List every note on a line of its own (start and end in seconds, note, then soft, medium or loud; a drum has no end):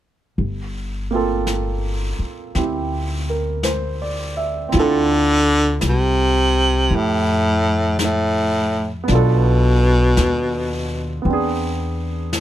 0.37 2.15 G1 medium
0.37 brush sweep soft
1.11 4.73 A#3 soft
1.11 2.53 C4 soft
1.11 4.74 F4 soft
1.16 4.75 A4 soft
1.47 brush sweep soft
1.47 snare soft
1.47 hi-hat pedal soft
2.19 muted upright bass stroke soft
2.55 4.68 D2 medium
2.55 4.67 C4 soft
2.55 4.71 E4 soft
2.55 4.74 G4 soft
2.55 brush sweep soft
2.55 snare soft
3.30 3.85 A#4 soft
3.63 4.32 C5 soft
3.63 brush sweep soft
3.63 snare soft
3.63 hi-hat pedal soft
4.02 4.57 D5 soft
4.37 4.93 E5 soft
4.69 9.07 C4 soft
4.69 6.90 E4 soft
4.69 brush sweep soft
4.69 snare soft
4.74 5.78 D2 medium
4.74 9.10 F4 soft
4.79 5.81 D3 loud
4.79 9.12 A4 medium
5.81 6.87 C2 medium
5.81 brush sweep soft
5.81 snare soft
5.81 hi-hat pedal soft
5.89 6.98 C3 medium
6.91 9.05 F2 medium
6.91 9.09 E4 soft
6.91 9.10 G4 soft
6.91 brush sweep soft
6.96 7.98 A2 medium
7.99 8.06 G#2 medium
7.99 brush sweep soft
7.99 snare soft
7.99 hi-hat pedal medium
8.04 8.93 A2 medium
9.04 11.20 B3 medium
9.08 10.13 B1 medium
9.08 11.25 D4 soft
9.08 11.27 F4 soft
9.08 brush sweep soft
9.08 snare soft
9.14 11.24 B2 medium
9.14 11.28 A4 medium
10.17 11.21 D#2 medium
10.17 brush sweep soft
10.17 snare soft
10.17 hi-hat pedal soft
11.22 12.40 E2 medium
11.22 12.40 B3 soft
11.22 12.40 C4 soft
11.22 brush sweep soft
11.30 12.40 D4 soft
11.30 12.40 G#4 soft
12.33 brush sweep soft
12.33 snare soft
12.33 hi-hat pedal soft